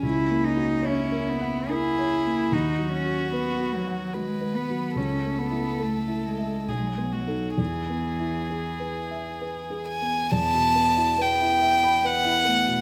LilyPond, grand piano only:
\new Staff \with { instrumentName = "Grand piano" } { \time 3/4 \key e \major \tempo 4 = 71 \tuplet 3/2 { cis,8 ais8 fis'8 cis''8 ais'8 fis''8 ais'8 cis''8 ais8 } | \tuplet 3/2 { dis,8 fis8 fis'8 b'8 fis'8 fis''8 fis'8 b'8 fis8 } | \tuplet 3/2 { cis,8 a8 e'8 a'8 e'8 e''8 b,,8 b8 <dis' a'>8 } | \tuplet 3/2 { e,8 b8 e'8 gis'8 b'8 e''8 b'8 gis'8 b8 } |
\key e \minor e,16 b,16 b16 e'16 b'16 e'16 e''16 b''16 b'16 e'16 b16 b,16 | }